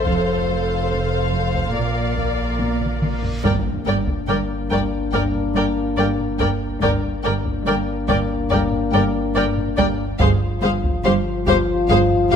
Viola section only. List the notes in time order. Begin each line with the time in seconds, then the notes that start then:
Already playing: A4
1.75 A#4
3.43 A#4
3.86 A#4
4.28 A#4
4.71 A#4
5.13 A#4
5.55 A#4
5.97 A#4
6.40 A#4
6.82 A#4
7.25 A#4
7.67 A#4
8.08 A#4
8.51 A#4
8.94 A#4
9.36 A#4
9.78 A#4
10.20 G#4
10.63 G#4
11.05 G4
11.47 G4
11.90 G#4
12.31 G4